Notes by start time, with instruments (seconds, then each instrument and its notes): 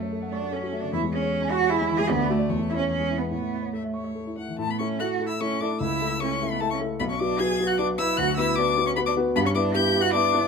Already playing: grand piano F#2 A3 F#4, cello A3, violin C#5
0.03 grand piano C#5
0.12 grand piano A4
0.22 grand piano F#5
0.32 cello D4, grand piano C#6
0.43 grand piano F#5
0.52 cello C#4, grand piano A4
0.62 grand piano F#4
0.73 grand piano A3
0.80 grand piano C#3, cello D4
0.93 grand piano E2, cello E4
1.03 grand piano G#3
1.12 cello C#4, grand piano G#4
1.22 grand piano C#5
1.32 grand piano G#4
1.42 grand piano G#5
1.51 cello F#4, grand piano C#6
1.62 grand piano G#5
1.70 cello E4, grand piano G#4
1.81 grand piano G#3
1.90 grand piano E3
1.97 grand piano G#3, cello G#4
2.09 grand piano D2, cello B3, violin D5
2.19 grand piano A3
2.29 cello A3, grand piano F#4
2.39 grand piano D5
2.49 grand piano E2, violin C#5
2.59 grand piano A3
2.69 grand piano E4, cello E4
2.77 cello C#4, grand piano C#5
2.89 grand piano E2, cello C#4, violin G#4
2.99 grand piano G#3
3.10 grand piano E4
3.18 cello B3, grand piano B4
3.31 grand piano A2, cello B3, violin C#5
3.42 grand piano A3
3.52 grand piano E4
3.62 grand piano C#5
3.73 cello A3, grand piano A4, violin E5
3.84 grand piano E5
3.94 violin C#5, grand piano C#6
4.15 grand piano A4
4.26 grand piano E4
4.37 grand piano A3, violin F#5
4.49 grand piano E3
4.58 grand piano A2, cello A3, violin A5
4.70 cello B3, violin B5
4.79 grand piano A3 E4 A4, cello C#4, violin C#6
4.99 grand piano A3 E4 A4, cello F#4, violin F#6
5.19 grand piano A3 E4 A4
5.27 cello E4, violin E6
5.40 grand piano A3 E4 A4, cello C#4, violin C#6
5.61 grand piano A3 E4 A4, cello D4, violin D6
5.80 grand piano C#2, cello E4, violin E6
6.01 grand piano A3 E4 A4
6.20 grand piano A3 E4 A4, cello C#4, violin C#6
6.42 grand piano A3 E4 A4
6.51 cello B3, violin B5
6.60 grand piano A3 E4 A4, cello A3, violin A5
6.71 cello C#4, violin C#6
6.80 grand piano A3 E4 A4
7.00 grand piano B1, cello B3, violin B5
7.10 cello C#4, violin C#6
7.19 grand piano F#3 F#4 B4, cello D4, violin D6
7.39 grand piano F#3 F#4 B4, cello G#4, violin G#6
7.59 grand piano F#3 F#4 B4
7.66 cello F#4, violin F#6
7.78 grand piano F#3 F#4 B4, cello D4, violin D6
7.98 grand piano F#3 F#4 B4, cello E4, violin E6
8.17 grand piano D2, cello F#4, violin F#6
8.36 grand piano B3 F#4 B4, cello E4, violin E6
8.56 grand piano B3 F#4 B4, cello D4, violin D6
8.77 grand piano B3 F#4 B4
8.86 cello C#4, violin C#6
8.96 cello B3, grand piano B3 F#4 B4, violin B5
9.06 cello D4, violin D6
9.17 grand piano B3 F#4 B4
9.35 grand piano G2, cello B3, violin B5
9.45 cello C#4, violin C#6
9.55 grand piano B3 E4 B4, cello D4, violin D6
9.73 grand piano B3 E4 B4, cello G4, violin G6
9.95 grand piano B3 E4 B4
10.01 cello F#4, violin F#6
10.13 grand piano B3 E4 B4, cello D4, violin D6
10.34 grand piano B3 E4 B4